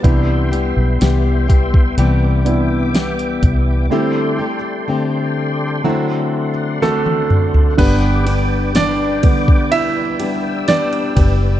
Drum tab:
CC |----------------|----------------|x---------------|
RD |----------------|----------------|x-x-x-x-x-x-xxx-|
HH |x-x-x-x-x-x-xxx-|----------------|----------------|
SD |----o-------o---|------------o---|----o-------o---|
T1 |----------------|-------------o--|----------------|
T2 |----------------|--------------o-|----------------|
FT |----------------|---------------o|----------------|
BD |o-----oo------o-|----------------|o-----oo------o-|